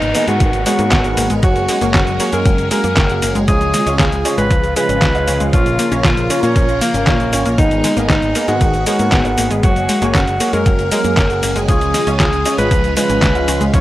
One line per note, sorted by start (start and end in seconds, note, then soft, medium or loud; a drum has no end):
0.00 0.13 G#1 medium
0.00 1.41 D#3 medium
0.00 5.49 G#3 medium
0.00 1.41 B3 medium
0.00 0.23 D#4 loud
0.00 5.49 G#4 medium
0.00 3.44 A#4 medium
0.00 closed hi-hat soft
0.00 downlifter medium
0.00 cabasa soft
0.15 0.27 A#3 medium
0.15 0.37 B3 medium
0.15 0.37 G#4 medium
0.15 0.37 A#4 medium
0.15 0.37 D#5 loud
0.15 open hi-hat loud
0.15 cabasa medium
0.28 0.38 G#2 medium
0.28 0.39 G#3 loud
0.28 0.61 F#4 loud
0.28 closed hi-hat soft
0.28 cabasa soft
0.40 0.51 G#1 loud
0.40 0.53 D#3 medium
0.40 kick loud
0.40 closed hi-hat loud
0.40 cabasa soft
0.53 0.64 G#1 medium
0.53 closed hi-hat soft
0.53 cabasa soft
0.66 0.77 G#3 loud
0.66 1.01 B3 medium
0.66 1.33 F#4 loud
0.66 1.02 G#4 medium
0.66 1.01 A#4 medium
0.66 1.02 C#5 loud
0.66 open hi-hat loud
0.66 cabasa medium
0.79 0.89 G#2 medium
0.79 0.90 A#3 medium
0.79 closed hi-hat soft
0.79 cabasa soft
0.92 1.02 G#1 loud
0.92 0.98 B3 medium
0.92 kick loud
0.92 snare loud
0.92 clap loud
0.92 closed hi-hat loud
0.92 cabasa soft
1.04 1.15 G#1 medium
1.04 1.40 B3 medium
1.04 1.40 G#4 medium
1.04 1.40 A#4 medium
1.04 1.40 F#5 medium
1.04 closed hi-hat soft
1.04 cabasa soft
1.17 1.28 G#1 loud
1.17 1.30 A#3 medium
1.17 open hi-hat loud
1.17 cabasa medium
1.30 1.41 G#1 medium
1.30 1.41 G#3 loud
1.30 closed hi-hat soft
1.30 cabasa soft
1.43 1.54 F#1 loud
1.43 3.46 F#3 medium
1.43 1.55 F#3 medium
1.43 1.78 A#3 medium
1.43 3.46 C#4 medium
1.43 1.88 F#4 loud
1.43 1.78 F#4 medium
1.43 1.78 G#4 medium
1.43 1.78 C#5 medium
1.43 kick loud
1.43 closed hi-hat loud
1.43 cabasa soft
1.56 1.66 F#1 medium
1.56 closed hi-hat soft
1.56 cabasa soft
1.69 1.80 G#3 loud
1.69 open hi-hat loud
1.69 cabasa medium
1.81 1.92 F#1 medium
1.81 1.92 A#3 loud
1.81 1.95 A#3 loud
1.81 1.95 F#4 medium
1.81 1.95 G#4 medium
1.81 1.95 C#5 loud
1.81 closed hi-hat soft
1.81 cabasa soft
1.94 2.01 C#4 medium
1.94 2.28 F#4 loud
1.94 kick loud
1.94 snare loud
1.94 clap loud
1.94 closed hi-hat loud
1.94 cabasa soft
2.07 2.18 F#1 medium
2.07 closed hi-hat soft
2.07 cabasa soft
2.20 2.32 A#3 medium
2.20 2.42 A#3 loud
2.20 2.42 F#4 medium
2.20 2.42 G#4 medium
2.20 2.42 C#5 loud
2.20 open hi-hat loud
2.20 cabasa medium
2.33 2.43 F#2 medium
2.33 2.44 G#3 loud
2.33 2.67 A#4 loud
2.33 closed hi-hat soft
2.33 cabasa soft
2.46 2.56 F#1 loud
2.46 2.58 F#3 medium
2.46 kick loud
2.46 closed hi-hat loud
2.46 cabasa soft
2.58 2.69 F#1 medium
2.58 closed hi-hat soft
2.58 cabasa soft
2.71 2.82 G#3 loud
2.71 3.07 A#3 medium
2.71 3.07 F#4 medium
2.71 3.07 G#4 medium
2.71 3.38 A#4 medium
2.71 3.07 A#4 loud
2.71 open hi-hat loud
2.71 cabasa medium
2.84 2.95 F#2 medium
2.84 2.95 A#3 medium
2.84 closed hi-hat soft
2.84 cabasa soft
2.97 3.07 F#1 loud
2.97 3.03 C#4 medium
2.97 kick loud
2.97 snare loud
2.97 clap loud
2.97 closed hi-hat loud
2.97 cabasa soft
3.10 3.20 F#1 medium
3.10 3.45 A#3 medium
3.10 3.45 F#4 medium
3.10 3.45 G#4 medium
3.10 3.45 F#5 medium
3.10 closed hi-hat soft
3.10 cabasa soft
3.22 3.33 F#1 loud
3.22 3.35 A#3 medium
3.22 open hi-hat loud
3.22 cabasa medium
3.35 3.46 F#1 medium
3.35 3.46 G#3 loud
3.35 closed hi-hat soft
3.35 cabasa soft
3.48 3.59 C#2 loud
3.48 7.54 C#3 medium
3.48 7.54 F3 medium
3.48 3.60 F3 medium
3.48 3.83 G#3 medium
3.48 3.83 C#4 medium
3.48 3.83 F4 medium
3.48 7.54 F4 medium
3.48 3.93 G#4 loud
3.48 3.83 C#5 medium
3.48 kick loud
3.48 closed hi-hat medium
3.48 cabasa soft
3.61 3.71 C#2 medium
3.61 closed hi-hat soft
3.61 cabasa soft
3.74 3.85 G#3 loud
3.74 snare soft
3.74 open hi-hat loud
3.74 cabasa medium
3.86 3.97 C#2 medium
3.86 4.00 G#3 loud
3.86 4.00 C#4 medium
3.86 3.98 C#4 loud
3.86 4.00 F4 medium
3.86 4.00 C#5 loud
3.86 closed hi-hat soft
3.86 cabasa soft
3.99 4.10 C#2 loud
3.99 4.06 F4 medium
3.99 4.33 G#4 loud
3.99 kick loud
3.99 snare loud
3.99 clap medium
3.99 closed hi-hat medium
3.99 cabasa soft
4.12 4.23 C#2 medium
4.12 closed hi-hat soft
4.12 cabasa soft
4.25 4.47 G#3 medium
4.25 4.47 C#4 medium
4.25 4.37 C#4 medium
4.25 4.47 F4 medium
4.25 4.47 C#5 loud
4.25 open hi-hat loud
4.25 cabasa medium
4.38 4.48 G#1 medium
4.38 4.49 G#3 loud
4.38 4.72 B4 loud
4.38 closed hi-hat soft
4.38 cabasa soft
4.51 4.61 C#2 loud
4.51 4.63 F3 medium
4.51 kick loud
4.51 closed hi-hat medium
4.51 cabasa soft
4.63 4.74 C#2 medium
4.63 closed hi-hat soft
4.63 cabasa soft
4.76 5.12 G#3 medium
4.76 4.87 G#3 loud
4.76 5.12 C#4 medium
4.76 5.12 F4 medium
4.76 5.12 B4 loud
4.76 5.43 B4 loud
4.76 open hi-hat loud
4.76 cabasa medium
4.89 5.00 G#1 medium
4.89 5.00 C#4 medium
4.89 closed hi-hat soft
4.89 cabasa soft
5.02 5.12 C#2 loud
5.02 5.08 F4 medium
5.02 kick loud
5.02 snare loud
5.02 clap loud
5.02 closed hi-hat medium
5.02 cabasa soft
5.15 5.25 C#2 medium
5.15 5.50 G#3 medium
5.15 5.50 C#4 medium
5.15 5.50 F4 medium
5.15 5.50 F5 medium
5.15 closed hi-hat soft
5.15 cabasa soft
5.28 5.38 C#2 loud
5.28 5.40 C#4 medium
5.28 open hi-hat loud
5.28 cabasa medium
5.40 5.51 C#2 medium
5.40 5.51 G#3 loud
5.40 closed hi-hat soft
5.40 cabasa soft
5.53 5.64 A#1 loud
5.53 5.65 F3 medium
5.53 5.89 A#3 medium
5.53 5.89 C#4 medium
5.53 5.89 F4 medium
5.53 5.98 F4 loud
5.53 7.56 A#4 medium
5.53 5.89 C#5 medium
5.53 kick loud
5.53 closed hi-hat medium
5.53 cabasa soft
5.66 5.77 A#1 medium
5.66 closed hi-hat soft
5.66 cabasa soft
5.79 5.90 A#3 loud
5.79 open hi-hat loud
5.79 cabasa medium
5.92 6.02 A#1 medium
5.92 6.05 A#3 medium
5.92 6.05 C#4 medium
5.92 6.03 C#4 loud
5.92 6.05 F4 medium
5.92 6.05 C#5 loud
5.92 closed hi-hat soft
5.92 cabasa soft
6.04 6.15 A#1 loud
6.04 6.38 F4 medium
6.04 6.11 F4 medium
6.04 kick loud
6.04 snare loud
6.04 clap medium
6.04 closed hi-hat medium
6.04 cabasa soft
6.17 6.28 A#1 medium
6.17 closed hi-hat soft
6.17 cabasa soft
6.30 6.52 A#3 medium
6.30 6.52 C#4 medium
6.30 6.42 C#4 medium
6.30 6.52 F4 medium
6.30 6.52 C#5 loud
6.30 open hi-hat loud
6.30 cabasa medium
6.43 6.54 A#2 medium
6.43 6.54 A#3 loud
6.43 6.77 C#4 loud
6.43 closed hi-hat soft
6.43 cabasa soft
6.56 6.66 A#2 loud
6.56 6.68 F3 medium
6.56 kick loud
6.56 closed hi-hat medium
6.56 cabasa soft
6.69 6.79 A#1 medium
6.69 closed hi-hat soft
6.69 cabasa soft
6.81 7.48 A#3 medium
6.81 6.92 A#3 loud
6.81 open hi-hat loud
6.81 cabasa medium
6.94 7.05 G#1 medium
6.94 7.05 C#4 medium
6.94 closed hi-hat soft
6.94 cabasa soft
7.07 7.18 A#2 loud
7.07 7.30 A#3 medium
7.07 7.30 C#4 medium
7.07 7.30 F4 medium
7.07 7.14 F4 medium
7.07 7.30 C#5 loud
7.07 kick loud
7.07 snare loud
7.07 clap medium
7.07 closed hi-hat medium
7.07 cabasa soft
7.20 7.30 A#1 medium
7.20 closed hi-hat soft
7.20 cabasa soft
7.33 7.43 G#1 loud
7.33 7.55 A#3 loud
7.33 7.55 C#4 medium
7.33 7.45 C#4 medium
7.33 7.55 F4 medium
7.33 7.55 C#5 loud
7.33 open hi-hat loud
7.33 cabasa medium
7.46 7.56 A#1 medium
7.46 7.57 A#3 loud
7.46 closed hi-hat soft
7.46 cabasa soft
7.58 7.69 G#1 loud
7.58 7.71 D#3 medium
7.58 9.61 D#3 medium
7.58 13.70 G#3 medium
7.58 7.94 B3 medium
7.58 9.62 B3 medium
7.58 8.03 D#4 loud
7.58 7.94 G#4 medium
7.58 9.61 G#4 medium
7.58 7.94 A#4 medium
7.58 7.94 D#5 medium
7.58 kick loud
7.58 closed hi-hat medium
7.58 cabasa soft
7.71 7.82 G#1 medium
7.71 closed hi-hat soft
7.71 cabasa soft
7.84 7.95 G#3 loud
7.84 snare soft
7.84 open hi-hat loud
7.84 cabasa medium
7.97 8.07 G#1 medium
7.97 8.08 A#3 loud
7.97 8.10 B3 medium
7.97 8.10 G#4 medium
7.97 8.10 A#4 medium
7.97 8.10 D#5 loud
7.97 closed hi-hat soft
7.97 cabasa soft
8.10 8.20 G#1 loud
8.10 8.16 B3 medium
8.10 8.43 D#4 loud
8.10 kick loud
8.10 snare loud
8.10 clap medium
8.10 closed hi-hat medium
8.10 cabasa soft
8.22 8.33 G#1 medium
8.22 closed hi-hat soft
8.22 cabasa soft
8.35 8.48 A#3 medium
8.35 8.57 B3 medium
8.35 8.57 G#4 medium
8.35 8.57 A#4 medium
8.35 8.57 D#5 loud
8.35 open hi-hat loud
8.35 cabasa medium
8.48 8.59 G#2 medium
8.48 8.59 G#3 loud
8.48 8.82 F#4 loud
8.48 closed hi-hat soft
8.48 cabasa soft
8.61 8.71 G#1 loud
8.61 8.73 D#3 medium
8.61 kick loud
8.61 closed hi-hat medium
8.61 cabasa soft
8.74 8.84 G#1 medium
8.74 closed hi-hat soft
8.74 cabasa soft
8.86 8.98 G#3 loud
8.86 9.22 B3 medium
8.86 9.53 F#4 loud
8.86 9.22 G#4 medium
8.86 9.22 A#4 medium
8.86 9.22 C#5 loud
8.86 open hi-hat loud
8.86 cabasa medium
8.99 9.10 G#2 medium
8.99 9.10 A#3 medium
8.99 closed hi-hat soft
8.99 cabasa soft
9.12 9.23 G#1 loud
9.12 9.19 B3 medium
9.12 kick loud
9.12 snare loud
9.12 clap medium
9.12 closed hi-hat medium
9.12 cabasa soft
9.25 9.36 G#1 medium
9.25 9.60 B3 medium
9.25 9.60 G#4 medium
9.25 9.60 A#4 medium
9.25 9.60 F#5 medium
9.25 closed hi-hat soft
9.25 cabasa soft
9.38 9.48 G#1 medium
9.38 9.50 A#3 medium
9.38 open hi-hat loud
9.38 cabasa medium
9.51 9.61 G#1 medium
9.51 9.62 G#3 loud
9.51 closed hi-hat soft
9.51 cabasa soft
9.63 9.74 F#1 loud
9.63 9.76 F#3 medium
9.63 11.67 F#3 medium
9.63 11.66 A#3 medium
9.63 9.99 A#3 medium
9.63 11.67 C#4 medium
9.63 9.99 F#4 medium
9.63 10.09 F#4 loud
9.63 9.99 G#4 medium
9.63 13.70 G#4 medium
9.63 9.99 C#5 medium
9.63 kick loud
9.63 closed hi-hat loud
9.63 cabasa soft
9.76 9.87 F#1 medium
9.76 closed hi-hat soft
9.76 cabasa soft
9.89 10.00 G#3 loud
9.89 open hi-hat loud
9.89 cabasa medium
10.02 10.12 F#1 medium
10.02 10.16 A#3 loud
10.02 10.13 A#3 loud
10.02 10.16 F#4 medium
10.02 10.16 G#4 medium
10.02 10.16 C#5 loud
10.02 closed hi-hat soft
10.02 cabasa soft
10.15 10.25 F#1 loud
10.15 10.21 C#4 medium
10.15 10.49 F#4 loud
10.15 kick loud
10.15 snare loud
10.15 clap medium
10.15 closed hi-hat medium
10.15 cabasa soft
10.27 10.38 F#1 medium
10.27 closed hi-hat soft
10.27 cabasa soft
10.40 10.62 A#3 medium
10.40 10.53 A#3 medium
10.40 10.62 F#4 medium
10.40 10.62 G#4 medium
10.40 10.62 C#5 loud
10.40 open hi-hat loud
10.40 cabasa medium
10.53 10.64 F#2 medium
10.53 10.64 G#3 loud
10.53 10.87 A#4 loud
10.53 closed hi-hat soft
10.53 cabasa soft
10.66 10.77 F#1 loud
10.66 10.78 F#3 medium
10.66 kick loud
10.66 closed hi-hat loud
10.66 cabasa soft
10.79 10.89 F#1 medium
10.79 closed hi-hat soft
10.79 cabasa soft
10.92 11.03 G#3 loud
10.92 11.27 A#3 medium
10.92 11.27 F#4 medium
10.92 11.27 G#4 medium
10.92 11.27 A#4 loud
10.92 11.58 A#4 loud
10.92 open hi-hat loud
10.92 cabasa medium
11.04 11.15 F#2 medium
11.04 11.16 A#3 medium
11.04 closed hi-hat soft
11.04 cabasa soft
11.17 11.28 F#1 loud
11.17 11.24 C#4 medium
11.17 kick loud
11.17 snare loud
11.17 clap medium
11.17 closed hi-hat medium
11.17 cabasa soft
11.30 11.41 F#1 medium
11.30 11.66 A#3 medium
11.30 11.66 F#4 medium
11.30 11.66 G#4 medium
11.30 11.66 F#5 medium
11.30 closed hi-hat soft
11.30 cabasa soft
11.43 11.54 F#1 loud
11.43 11.55 A#3 medium
11.43 open hi-hat loud
11.43 cabasa medium
11.56 11.66 F#1 medium
11.56 11.67 G#3 loud
11.56 closed hi-hat soft
11.56 cabasa soft
11.69 11.79 C#2 loud
11.69 13.81 C#3 medium
11.69 13.72 F3 medium
11.69 11.81 F3 medium
11.69 12.04 G#3 medium
11.69 12.04 C#4 medium
11.69 12.04 F4 medium
11.69 13.81 F4 medium
11.69 12.14 G#4 loud
11.69 12.04 C#5 medium
11.69 kick loud
11.69 closed hi-hat loud
11.69 cabasa soft
11.81 11.92 C#2 medium
11.81 closed hi-hat soft
11.81 cabasa soft
11.94 12.05 G#3 loud
11.94 snare soft
11.94 open hi-hat loud
11.94 cabasa medium
12.07 12.18 C#2 medium
12.07 12.21 G#3 medium
12.07 12.18 C#4 loud
12.07 12.21 C#4 medium
12.07 12.21 F4 medium
12.07 12.21 C#5 loud
12.07 closed hi-hat soft
12.07 cabasa soft
12.20 12.26 F4 medium
12.20 12.54 G#4 medium
12.20 kick loud
12.20 snare loud
12.20 clap medium
12.20 closed hi-hat loud
12.20 cabasa soft
12.33 12.43 C#2 medium
12.33 closed hi-hat soft
12.33 cabasa soft
12.45 12.67 G#3 medium
12.45 12.58 C#4 medium
12.45 12.67 C#4 medium
12.45 12.67 F4 medium
12.45 12.67 C#5 loud
12.45 open hi-hat loud
12.45 cabasa medium
12.58 12.69 G#1 medium
12.58 12.69 G#3 loud
12.58 12.92 B4 loud
12.58 closed hi-hat soft
12.58 cabasa soft
12.71 12.82 C#2 loud
12.71 12.83 F3 medium
12.71 kick loud
12.71 closed hi-hat loud
12.71 cabasa soft
12.84 12.94 C#2 medium
12.84 closed hi-hat soft
12.84 cabasa soft
12.97 13.08 G#3 loud
12.97 13.32 G#3 medium
12.97 13.32 C#4 medium
12.97 13.32 F4 medium
12.97 13.63 B4 medium
12.97 13.32 B4 loud
12.97 open hi-hat loud
12.97 cabasa medium
13.10 13.20 G#1 medium
13.10 13.21 C#4 medium
13.10 closed hi-hat soft
13.10 cabasa soft
13.22 13.33 C#2 loud
13.22 13.29 F4 medium
13.22 kick loud
13.22 snare loud
13.22 clap medium
13.22 closed hi-hat loud
13.22 cabasa soft
13.35 13.46 C#2 medium
13.35 13.71 G#3 medium
13.35 13.71 C#4 medium
13.35 13.71 F4 medium
13.35 13.71 F5 medium
13.35 closed hi-hat soft
13.35 cabasa soft
13.48 13.59 C#2 loud
13.48 13.60 C#4 medium
13.48 open hi-hat loud
13.48 cabasa medium
13.61 13.71 C#2 medium
13.61 13.72 G#3 loud
13.61 closed hi-hat soft
13.61 cabasa soft
13.73 13.81 A#1 loud
13.73 13.81 F3 medium
13.73 13.81 A#3 medium
13.73 13.81 C#4 loud
13.73 13.81 C#4 medium
13.73 13.81 F4 medium
13.73 13.81 A#4 medium
13.73 13.81 C#5 medium
13.73 kick loud
13.73 closed hi-hat loud
13.73 cabasa soft